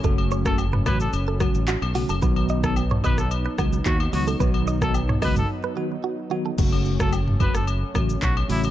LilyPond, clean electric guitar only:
\new Staff \with { instrumentName = "Clean electric guitar" } { \time 4/4 \key fis \dorian \tempo 4 = 110 a'16 r16 cis''16 r8 b'16 cis''16 r8 a'16 fis'16 r16 fis'16 r16 fis'16 a'16 | b'16 r16 dis''16 r8 cis''16 dis''16 r8 b'16 fis'16 r16 fis'16 r16 fis'16 a'16 | b'16 r16 dis''16 r8 cis''16 dis''16 r8 b'16 fis'16 r16 fis'16 r16 fis'16 a'16 | r1 | }